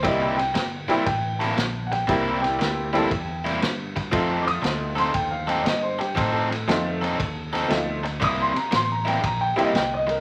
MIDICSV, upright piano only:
0, 0, Header, 1, 2, 480
1, 0, Start_track
1, 0, Tempo, 511073
1, 38, Time_signature, 4, 2, 24, 8
1, 9583, End_track
2, 0, Start_track
2, 0, Title_t, "Upright piano"
2, 0, Program_c, 0, 0
2, 38, Note_on_c, 0, 75, 82
2, 193, Note_off_c, 0, 75, 0
2, 212, Note_on_c, 0, 79, 72
2, 335, Note_off_c, 0, 79, 0
2, 349, Note_on_c, 0, 79, 88
2, 613, Note_off_c, 0, 79, 0
2, 999, Note_on_c, 0, 79, 92
2, 1307, Note_on_c, 0, 81, 76
2, 1312, Note_off_c, 0, 79, 0
2, 1754, Note_on_c, 0, 78, 60
2, 1779, Note_off_c, 0, 78, 0
2, 1779, Note_off_c, 0, 81, 0
2, 1799, Note_on_c, 0, 79, 85
2, 2257, Note_off_c, 0, 79, 0
2, 2271, Note_on_c, 0, 79, 84
2, 3207, Note_off_c, 0, 79, 0
2, 4152, Note_on_c, 0, 86, 66
2, 4199, Note_off_c, 0, 86, 0
2, 4202, Note_on_c, 0, 87, 98
2, 4510, Note_off_c, 0, 87, 0
2, 4685, Note_on_c, 0, 84, 82
2, 4828, Note_on_c, 0, 79, 86
2, 4836, Note_off_c, 0, 84, 0
2, 4986, Note_on_c, 0, 77, 84
2, 4988, Note_off_c, 0, 79, 0
2, 5146, Note_off_c, 0, 77, 0
2, 5166, Note_on_c, 0, 79, 83
2, 5303, Note_on_c, 0, 75, 86
2, 5317, Note_off_c, 0, 79, 0
2, 5465, Note_off_c, 0, 75, 0
2, 5472, Note_on_c, 0, 72, 82
2, 5629, Note_off_c, 0, 72, 0
2, 5637, Note_on_c, 0, 67, 80
2, 5792, Note_off_c, 0, 67, 0
2, 5792, Note_on_c, 0, 72, 88
2, 5943, Note_on_c, 0, 69, 86
2, 5949, Note_off_c, 0, 72, 0
2, 7352, Note_off_c, 0, 69, 0
2, 7738, Note_on_c, 0, 87, 104
2, 7882, Note_off_c, 0, 87, 0
2, 7903, Note_on_c, 0, 84, 86
2, 8045, Note_off_c, 0, 84, 0
2, 8051, Note_on_c, 0, 82, 88
2, 8199, Note_off_c, 0, 82, 0
2, 8220, Note_on_c, 0, 84, 93
2, 8363, Note_off_c, 0, 84, 0
2, 8377, Note_on_c, 0, 82, 86
2, 8522, Note_off_c, 0, 82, 0
2, 8532, Note_on_c, 0, 79, 89
2, 8679, Note_off_c, 0, 79, 0
2, 8695, Note_on_c, 0, 82, 84
2, 8839, Note_on_c, 0, 79, 92
2, 8841, Note_off_c, 0, 82, 0
2, 8992, Note_off_c, 0, 79, 0
2, 9023, Note_on_c, 0, 75, 86
2, 9165, Note_off_c, 0, 75, 0
2, 9165, Note_on_c, 0, 79, 88
2, 9315, Note_off_c, 0, 79, 0
2, 9334, Note_on_c, 0, 75, 89
2, 9480, Note_off_c, 0, 75, 0
2, 9487, Note_on_c, 0, 70, 82
2, 9583, Note_off_c, 0, 70, 0
2, 9583, End_track
0, 0, End_of_file